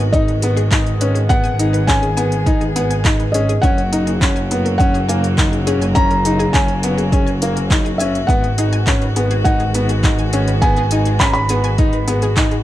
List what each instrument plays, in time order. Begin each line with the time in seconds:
Already playing: double bass section G#1, string quartet D#3 G#3 B3 F#4, felt piano D#5
0.13 upright piano D#4, felt piano D#5, kick, closed hi-hat
0.28 synth arpeggio sound B4, closed hi-hat
0.42 upright piano B3, synth arpeggio sound G#4, closed hi-hat
0.57 synth arpeggio sound G#4, closed hi-hat
0.71 upright piano D#4, synth arpeggio sound G#5, kick, clap, closed hi-hat
0.86 closed hi-hat
1.01 upright piano C#4, synth arpeggio sound B4, closed hi-hat
1.15 synth arpeggio sound G#4, closed hi-hat
1.29 upright piano B3, synth arpeggio sound G#4, string quartet G#4, felt piano F#5, kick, closed hi-hat
1.44 synth arpeggio sound G#5, closed hi-hat
1.59 upright piano D#4, closed hi-hat
1.73 synth arpeggio sound B4, closed hi-hat
1.87 upright piano C#4, synth arpeggio sound G#4, felt piano G#5, kick, clap, closed hi-hat
2.03 synth arpeggio sound G#4, closed hi-hat
2.17 upright piano B3, synth arpeggio sound G#5, closed hi-hat
2.32 closed hi-hat
2.46 upright piano D#4, synth arpeggio sound B4, kick, closed hi-hat
2.61 synth arpeggio sound G#4, closed hi-hat
2.76 upright piano B3, synth arpeggio sound G#4, closed hi-hat
2.91 synth arpeggio sound G#5, closed hi-hat
3.05 upright piano D#4, kick, clap, closed hi-hat
3.20 synth arpeggio sound B4, closed hi-hat
3.32 upright piano C#4, synth arpeggio sound G#4, felt piano D#5, closed hi-hat
3.49 synth arpeggio sound G#4, closed hi-hat
3.62 double bass section F#1, string quartet C#3 F#3 A#3 F#4, upright piano C#4, felt piano F#5, synth arpeggio sound G#5, kick, closed hi-hat
3.78 closed hi-hat
3.92 upright piano D#4, synth arpeggio sound A#4, closed hi-hat
4.07 synth arpeggio sound G#4, closed hi-hat
4.21 upright piano C#4, synth arpeggio sound G#4, kick, clap, closed hi-hat
4.36 synth arpeggio sound G#5, closed hi-hat
4.51 upright piano B3, closed hi-hat
4.65 synth arpeggio sound A#4, closed hi-hat
4.78 upright piano C#4, synth arpeggio sound G#4, felt piano F#5, kick, closed hi-hat
4.94 synth arpeggio sound G#4, closed hi-hat
5.09 upright piano A#3, synth arpeggio sound G#5, closed hi-hat
5.24 closed hi-hat
5.38 upright piano D#4, synth arpeggio sound A#4, kick, clap, closed hi-hat
5.52 synth arpeggio sound G#4, closed hi-hat
5.67 upright piano C#4, synth arpeggio sound G#4, closed hi-hat
5.81 synth arpeggio sound G#5, closed hi-hat
5.95 upright piano C#4, felt piano A#5, kick, closed hi-hat
6.11 synth arpeggio sound A#4, closed hi-hat
6.25 upright piano D#4, synth arpeggio sound G#4, closed hi-hat
6.39 synth arpeggio sound G#4, closed hi-hat
6.53 upright piano C#4, felt piano G#5, synth arpeggio sound G#5, kick, clap, closed hi-hat
6.68 closed hi-hat
6.83 upright piano B3, synth arpeggio sound A#4, closed hi-hat
6.98 synth arpeggio sound G#4, closed hi-hat
7.12 upright piano C#4, synth arpeggio sound G#4, kick, closed hi-hat
7.27 synth arpeggio sound G#5, closed hi-hat
7.42 upright piano A#3, closed hi-hat
7.56 synth arpeggio sound A#4, closed hi-hat
7.70 upright piano D#4, synth arpeggio sound G#4, kick, clap, closed hi-hat
7.85 synth arpeggio sound G#4, closed hi-hat
7.98 upright piano C#4, felt piano E5, synth arpeggio sound G#5, closed hi-hat
8.15 closed hi-hat
8.27 double bass section G#1, string quartet D#3 G#3 B3, upright piano B3, synth arpeggio sound B4, felt piano F#5, kick, closed hi-hat
8.44 synth arpeggio sound G#4, closed hi-hat
8.58 upright piano D#4, synth arpeggio sound G#4, closed hi-hat
8.73 synth arpeggio sound G#5, closed hi-hat
8.87 upright piano C#4, synth arpeggio sound G#4, kick, clap, closed hi-hat
9.02 synth arpeggio sound B4, closed hi-hat
9.16 upright piano B3, synth arpeggio sound G#4, closed hi-hat
9.31 synth arpeggio sound G#4, closed hi-hat
9.44 upright piano D#4, felt piano F#5, synth arpeggio sound G#5, kick, closed hi-hat
9.60 synth arpeggio sound G#4, closed hi-hat
9.74 upright piano B3, synth arpeggio sound B4, closed hi-hat
9.89 synth arpeggio sound G#4, closed hi-hat
10.04 upright piano D#4, synth arpeggio sound G#4, kick, clap, closed hi-hat
10.19 synth arpeggio sound G#5, closed hi-hat
10.33 upright piano C#4, synth arpeggio sound G#4, closed hi-hat
10.48 synth arpeggio sound B4, closed hi-hat
10.62 upright piano B3, synth arpeggio sound G#4, felt piano G#5, kick, closed hi-hat
10.76 synth arpeggio sound G#4, closed hi-hat
10.91 upright piano D#4, synth arpeggio sound G#5, closed hi-hat
11.05 synth arpeggio sound G#4, closed hi-hat
11.20 upright piano C#4, synth arpeggio sound B4, felt piano B5, kick, clap, closed hi-hat
11.25 felt piano A#5
11.33 synth arpeggio sound G#4, felt piano B5, closed hi-hat
11.49 upright piano B3, synth arpeggio sound G#4, closed hi-hat
11.64 synth arpeggio sound G#5, closed hi-hat
11.78 upright piano D#4, synth arpeggio sound G#4, kick, closed hi-hat
11.93 synth arpeggio sound B4, closed hi-hat
12.08 upright piano B3, synth arpeggio sound G#4, closed hi-hat
12.22 synth arpeggio sound G#4, closed hi-hat
12.37 upright piano D#4, synth arpeggio sound G#5, kick, clap, closed hi-hat
12.51 synth arpeggio sound G#4, closed hi-hat